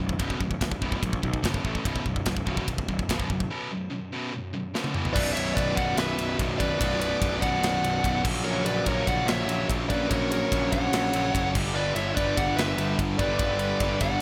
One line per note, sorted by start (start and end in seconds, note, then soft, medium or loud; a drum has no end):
0.00 0.13 B0 medium
0.00 0.17 B1 medium
0.00 0.17 F#2 medium
0.09 kick medium
0.19 0.34 B0 loud
0.19 0.39 B1 medium
0.19 0.39 F#2 medium
0.19 0.39 B2 loud
0.19 kick medium
0.19 ride bell medium
0.30 kick medium
0.40 0.55 B0 medium
0.40 0.59 B1 medium
0.40 0.59 F#2 medium
0.40 kick medium
0.51 kick medium
0.61 0.76 B0 medium
0.61 0.79 B1 medium
0.61 0.79 F#2 medium
0.61 kick medium
0.61 snare loud
0.61 ride bell medium
0.71 kick medium
0.82 0.96 B0 medium
0.82 1.01 B1 medium
0.82 1.01 F#2 loud
0.82 1.01 B2 loud
0.82 kick medium
0.92 kick medium
1.02 1.17 A#1 medium
1.02 1.21 B1 medium
1.02 1.21 F#2 medium
1.02 kick medium
1.02 ride bell medium
1.13 kick medium
1.23 1.41 B1 medium
1.23 1.38 B1 medium
1.23 1.42 F#2 medium
1.23 kick medium
1.34 kick medium
1.43 1.58 G1 medium
1.43 1.63 B1 medium
1.43 1.63 F#2 medium
1.43 1.63 B2 loud
1.43 kick medium
1.43 snare loud
1.43 ride bell medium
1.54 kick medium
1.64 1.79 A1 medium
1.64 1.84 A2 medium
1.64 1.84 E3 medium
1.64 1.84 A3 medium
1.64 kick medium
1.75 kick medium
1.85 2.00 B0 loud
1.85 2.04 B1 medium
1.85 2.04 F#2 medium
1.85 2.05 B2 loud
1.85 kick loud
1.85 ride bell medium
1.96 kick medium
2.06 2.20 B0 medium
2.06 2.24 B1 medium
2.06 2.24 F#2 medium
2.06 kick medium
2.16 kick medium
2.26 2.41 B0 medium
2.26 2.45 B1 medium
2.26 2.45 F#2 medium
2.26 kick medium
2.26 snare loud
2.26 ride bell medium
2.37 kick medium
2.46 2.61 B0 medium
2.46 2.66 B1 medium
2.46 2.66 F#2 loud
2.46 2.67 B2 loud
2.46 kick medium
2.57 kick medium
2.67 2.82 B0 medium
2.67 2.86 B1 medium
2.67 2.86 F#2 medium
2.67 kick medium
2.67 ride bell medium
2.78 kick medium
2.88 3.03 B0 medium
2.88 3.07 B1 medium
2.88 3.07 F#2 medium
2.88 kick medium
2.99 kick medium
3.09 3.24 B0 medium
3.09 3.28 B1 loud
3.09 3.29 F#2 loud
3.09 3.29 B2 medium
3.09 kick medium
3.09 snare loud
3.09 ride bell medium
3.20 kick medium
3.29 3.44 F#1 medium
3.29 3.48 B1 medium
3.29 3.48 F#2 medium
3.29 kick medium
3.40 kick medium
3.50 3.70 B1 medium
3.50 3.70 F#2 loud
3.50 3.70 B2 medium
3.71 3.89 B1 medium
3.71 3.90 F#2 medium
3.90 4.09 B1 medium
3.90 4.10 F#2 medium
4.12 4.31 B1 medium
4.12 4.32 F#2 loud
4.12 4.32 B2 medium
4.32 4.51 B1 medium
4.32 4.51 F#2 medium
4.53 4.72 B1 medium
4.53 4.72 F#2 medium
4.74 4.93 B1 medium
4.74 4.93 F#2 medium
4.74 4.93 B2 loud
4.74 snare medium
4.84 high tom medium
4.94 5.14 E2 medium
4.94 5.14 B2 medium
4.94 5.14 E3 medium
4.94 mid tom medium
5.05 floor tom medium
5.13 5.32 B0 loud
5.13 5.79 B1 medium
5.13 5.76 F#2 medium
5.13 5.34 B4 medium
5.13 5.33 D5 loud
5.13 kick loud
5.13 crash loud
5.18 5.77 B2 loud
5.33 5.52 B0 medium
5.33 5.55 C#5 medium
5.33 5.54 E5 medium
5.33 ride medium
5.54 5.73 B0 loud
5.54 5.75 B4 medium
5.54 5.76 D5 loud
5.54 kick medium
5.54 ride loud
5.75 5.93 B0 loud
5.75 6.38 F#2 medium
5.75 6.38 B2 medium
5.75 5.97 D5 medium
5.75 5.95 F#5 loud
5.75 kick medium
5.75 ride medium
5.80 6.38 B1 medium
5.97 6.14 B0 loud
5.97 6.37 B4 loud
5.97 6.36 E5 loud
5.97 snare loud
5.97 ride loud
6.18 6.35 B0 medium
6.18 ride medium
6.39 6.55 B0 loud
6.39 6.79 B1 medium
6.39 6.79 F#2 medium
6.39 6.80 B2 medium
6.39 kick medium
6.39 ride loud
6.58 6.76 B0 medium
6.58 6.79 B4 medium
6.58 6.79 D5 medium
6.58 kick medium
6.58 ride medium
6.80 7.13 B0 loud
6.80 7.40 B1 medium
6.80 7.41 F#2 loud
6.80 7.40 B2 loud
6.80 6.99 B4 medium
6.80 6.99 D5 loud
6.80 kick loud
6.80 ride loud
7.01 7.39 B4 medium
7.01 7.43 D5 loud
7.01 ride medium
7.21 7.38 B0 loud
7.21 kick medium
7.21 ride loud
7.41 7.58 B0 medium
7.41 8.02 B1 medium
7.41 8.03 F#2 medium
7.41 8.02 B2 loud
7.41 8.20 D5 medium
7.41 8.20 F#5 loud
7.41 kick medium
7.41 ride medium
7.61 7.78 B0 loud
7.61 snare loud
7.61 ride loud
7.82 7.99 B0 medium
7.82 ride medium
8.04 8.20 B0 loud
8.04 8.23 B1 loud
8.04 8.24 F#2 medium
8.04 8.24 B2 medium
8.04 kick medium
8.04 ride loud
8.25 8.41 A#1 loud
8.25 8.85 F#2 medium
8.25 8.86 C#3 medium
8.25 8.87 F#3 loud
8.25 kick loud
8.25 crash loud
8.44 8.61 A#1 loud
8.44 8.64 A#4 medium
8.44 8.66 C#5 loud
8.64 8.81 A#1 medium
8.64 8.84 B4 medium
8.64 8.87 D5 loud
8.64 ride medium
8.86 9.02 A#1 loud
8.86 9.47 F#2 medium
8.86 9.47 C#3 medium
8.86 9.46 F#3 medium
8.86 9.05 A#4 medium
8.86 9.06 C#5 loud
8.86 kick medium
8.86 ride loud
9.07 9.23 A#1 medium
9.07 9.26 D5 medium
9.07 9.28 F#5 loud
9.07 kick medium
9.07 ride medium
9.25 9.42 A#1 loud
9.25 9.66 C#5 medium
9.25 9.66 E5 loud
9.25 snare loud
9.25 ride loud
9.46 9.63 A#1 medium
9.46 9.88 F#2 medium
9.46 9.88 C#3 medium
9.46 9.87 F#3 medium
9.46 ride medium
9.69 9.85 A#1 medium
9.69 kick medium
9.69 ride loud
9.89 10.06 A#1 loud
9.89 10.50 F#2 medium
9.89 10.50 C#3 medium
9.89 10.51 F#3 loud
9.89 10.09 B4 medium
9.89 10.08 D5 medium
9.89 kick medium
9.89 ride medium
10.10 10.43 A#1 loud
10.10 10.29 A#4 medium
10.10 10.30 C#5 loud
10.10 kick loud
10.10 ride loud
10.31 10.70 A#4 medium
10.31 10.73 C#5 medium
10.31 ride medium
10.52 10.68 A#1 medium
10.52 11.12 F#2 medium
10.52 11.12 C#3 medium
10.52 11.12 F#3 medium
10.52 kick loud
10.52 ride loud
10.72 10.88 A#1 medium
10.72 11.51 C#5 medium
10.72 11.50 F#5 medium
10.72 kick medium
10.72 ride medium
10.93 11.09 A#1 loud
10.93 snare loud
10.93 ride loud
11.13 11.29 A#1 medium
11.13 11.54 F#2 medium
11.13 11.53 C#3 medium
11.13 11.53 F#3 medium
11.13 ride medium
11.34 11.55 F#1 medium
11.34 kick medium
11.34 ride loud
11.54 11.71 G1 medium
11.54 12.15 G2 medium
11.54 12.15 D3 medium
11.54 12.17 G3 medium
11.54 kick loud
11.54 crash loud
11.74 11.91 G1 loud
11.74 11.94 B4 medium
11.74 11.94 D5 loud
11.95 12.11 G1 medium
11.95 12.14 C#5 medium
11.95 12.14 E5 loud
11.95 ride medium
12.15 12.33 G1 medium
12.15 12.76 G2 medium
12.15 12.77 D3 medium
12.15 12.77 G3 medium
12.15 12.34 B4 medium
12.15 12.37 D5 medium
12.15 kick medium
12.15 ride loud
12.36 12.53 G1 medium
12.36 12.55 D5 medium
12.36 12.56 F#5 medium
12.36 kick medium
12.36 ride medium
12.56 12.73 G1 medium
12.56 12.95 B4 medium
12.56 12.95 E5 loud
12.56 snare loud
12.56 ride medium
12.77 12.94 G1 medium
12.77 13.16 G2 medium
12.77 13.17 D3 medium
12.77 13.19 G3 medium
12.77 ride medium
12.99 13.15 G1 medium
12.99 kick loud
12.99 ride loud
13.18 13.35 G1 medium
13.18 13.79 G2 medium
13.18 13.79 D3 medium
13.18 13.82 G3 medium
13.18 13.39 B4 medium
13.18 13.38 D5 medium
13.18 kick medium
13.18 ride medium
13.39 13.72 G1 loud
13.39 13.59 B4 medium
13.39 13.58 D5 loud
13.39 kick loud
13.39 ride loud
13.59 13.98 B4 medium
13.59 14.02 D5 loud
13.59 ride medium
13.80 13.97 G1 loud
13.80 14.22 G2 medium
13.80 14.22 D3 medium
13.80 14.22 G3 loud
13.80 kick medium
13.80 ride loud
14.01 14.17 G1 medium
14.01 14.22 D5 medium
14.01 14.22 F#5 loud
14.01 kick medium
14.01 ride medium